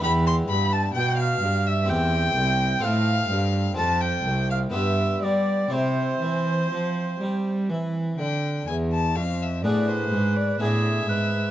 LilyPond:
<<
  \new Staff \with { instrumentName = "Oboe" } { \time 3/4 \key e \phrygian \tempo 4 = 62 b''16 c'''16 b''16 a''16 g''16 f''8 e''16 g''4 | f''8. r16 a''16 g''8 f''16 e''8 d''8 | c''2 r4 | r4 b'4 gis'8 b'8 | }
  \new Staff \with { instrumentName = "Violin" } { \time 3/4 \key e \phrygian b''16 c'''16 b''16 a''16 g''16 f''8 e''16 g''4 | f''4 a''16 g''8 f''16 e''8 d''8 | c''2 r8 g''8 | gis''16 a''16 f''16 e''16 d''16 c''8 d''16 e''4 | }
  \new Staff \with { instrumentName = "Harpsichord" } { \time 3/4 \key e \phrygian <b e' g'>2 <c' e' g'>4 | <c' f' a'>4 <c' f' a'>4 <b f' g'>4 | <c' e' g'>2. | r4 <b d' gis'>4 <b d' gis'>4 | }
  \new Staff \with { instrumentName = "Harpsichord" } { \clef bass \time 3/4 \key e \phrygian e,8 g,8 b,8 g,8 e,8 c,8 | a,8 g,8 f,8 c,8 g,8 g8 | c8 e8 f8 g8 e8 d8 | e,8 f,8 a,8 gis,8 a,8 gis,8 | }
  \new Staff \with { instrumentName = "Cello" } { \clef bass \time 3/4 \key e \phrygian e,8 g,8 b,8 g,8 e,8 c,8 | a,8 g,8 f,8 c,8 g,8 g8 | c8 e8 f8 g8 e8 d8 | e,8 f,8 a,8 gis,8 a,8 gis,8 | }
>>